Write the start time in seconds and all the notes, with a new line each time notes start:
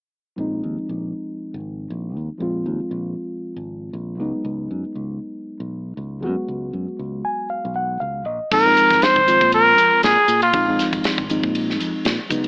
0.36 A#1 F3 G#3 C4 D#4
0.64 D#2
0.78 muted fingered electric bass stroke
0.89 A#1
1.54 G#1
1.90 A#1
2.16 D#2
2.38 A#1 F3 G#3 C4
2.42 F4
2.66 D#2
2.80 muted fingered electric bass stroke
2.91 A#1
3.56 G#1
3.93 A#1
4.17 C#2 F#3 G#3 B3 D#4
4.45 C#2
4.71 F#2
4.84 muted fingered electric bass stroke
4.95 C#2
5.60 B1
5.97 C#2
6.20 F#2 F#3 G#3 B3 F#4
6.48 C#2
6.73 F#2
6.88 muted fingered electric bass stroke
6.99 C#2
7.25 G#5
7.50 F5
7.65 B1
7.76 F#5
8.00 C#2 F5
8.26 A#1 D#5
8.51 A#1 F3 G#3 C4 D#4 A#4, kick, crash
8.65 F3 G#3 C4 D#4
8.77 hi-hat pedal, ride
8.90 G#1, kick, snare, ride
9.02 C5, muted fingered electric bass stroke, snare, ride
9.16 G#1, kick
9.26 F3 G#3 C4 F4, hi-hat pedal, ride
9.41 A#2, kick, ride
9.52 A#4, ride
9.78 F2, hi-hat pedal, ride
10.03 A#2 G#4, snare, ride
10.28 A#2, hi-hat pedal, ride
10.42 F4, ride
10.52 A#1 F3 G#3 C4 D#4, kick, ride
10.67 F3 G#3 C4 D#4
10.79 snare, hi-hat pedal, ride
10.93 G#1, kick, ride
11.04 muted fingered electric bass stroke, snare, ride
11.18 G#1, kick
11.29 F3 G#3 C4 D#4, hi-hat pedal, ride
11.43 A#2, kick
11.55 ride
11.70 snare
11.80 F2, hi-hat pedal, ride
12.05 A#2, snare, ride
12.29 C#2 F#3 G#3 B3 D#4, kick, hi-hat pedal, ride
12.44 ride